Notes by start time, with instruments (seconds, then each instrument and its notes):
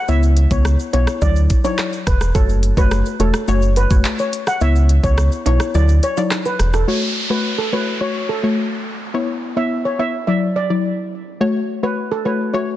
0.08 sub bass C#2, synth pluck B3 E4 C#5, steel pan E5, shaker
0.23 shaker
0.37 closed hi-hat, shaker
0.51 sub bass C#2, synth pluck B3 E4 C#5, steel pan C#5, kick, shaker
0.65 cross-stick, shaker
0.79 shaker
0.93 sub bass B1, synth pluck B3 E4 C#5, steel pan C#5, closed hi-hat, high timbale, shaker
1.07 cross-stick, shaker
1.22 sub bass D2, synth pluck F#3 E4 D5, steel pan D5, kick, shaker
1.36 shaker
1.50 kick, closed hi-hat, shaker
1.64 synth pluck F#3 E4 D5, steel pan C#5, high timbale, shaker
1.78 cross-stick, clap, shaker
1.93 shaker
2.07 sub bass E1, steel pan B4, kick, cross-stick, closed hi-hat, shaker
2.21 cross-stick, shaker
2.35 sub bass F#1, synth pluck A3 F#4 C#5, steel pan A4, kick, shaker
2.49 shaker
2.63 closed hi-hat, shaker
2.77 sub bass F#1, synth pluck A3 F#4 C#5, steel pan B4, kick, shaker
2.91 cross-stick, shaker
3.06 shaker
3.19 sub bass E1, synth pluck A3 F#4 C#5, steel pan A4, closed hi-hat, shaker
3.34 cross-stick, shaker
3.48 sub bass F#1, synth pluck A3 F#4 C#5, steel pan C#5, shaker
3.62 shaker
3.76 steel pan B4, closed hi-hat, shaker
3.90 sub bass F#1, synth pluck A3 F#4 C#5, kick, shaker
4.05 clap, shaker
4.19 steel pan C#5, shaker
4.33 closed hi-hat, shaker
4.47 steel pan F#5, cross-stick, shaker
4.61 sub bass C#2, synth pluck B3 E4 C#5, steel pan E5, shaker
4.76 shaker
4.89 closed hi-hat, shaker
5.04 sub bass C#2, synth pluck B3 E4 C#5, steel pan C#5, kick, shaker
5.18 cross-stick, shaker
5.32 shaker
5.46 sub bass B1, synth pluck B3 E4 C#5, steel pan C#5, closed hi-hat, high timbale, shaker
5.60 cross-stick, shaker
5.74 sub bass D2, synth pluck F#3 E4 D5, steel pan D5, shaker
5.89 shaker
6.03 steel pan C#5, closed hi-hat, shaker
6.17 synth pluck F#3 E4 D5, high timbale, shaker
6.31 cross-stick, clap, high timbale, shaker
6.45 steel pan B4, shaker
6.59 sub bass E1, cross-stick, closed hi-hat, shaker
6.73 steel pan A4, cross-stick, shaker
6.87 synth pluck A3 F#4 C#5, downlifter
7.30 synth pluck A3 F#4 C#5, steel pan B4
7.58 steel pan A4
7.72 synth pluck A3 F#4 C#5, steel pan B4
8.01 synth pluck A3 F#4 C#5, steel pan C#5
8.29 steel pan A4
8.43 synth pluck A3 F#4 C#5
9.14 synth pluck B3 E4 C#5
9.56 synth pluck B3 E4 C#5, steel pan E5
9.85 steel pan C#5
9.99 synth pluck B3 E4 C#5, steel pan E5
10.27 synth pluck F#3 E4 D5, steel pan E5
10.56 steel pan D5
10.70 synth pluck F#3 E4 D5
11.41 synth pluck A3 F#4 C#5
11.83 synth pluck A3 F#4 C#5, steel pan B4
12.12 steel pan A4
12.25 synth pluck A3 F#4 C#5, steel pan B4
12.54 synth pluck A3 F#4 C#5, steel pan C#5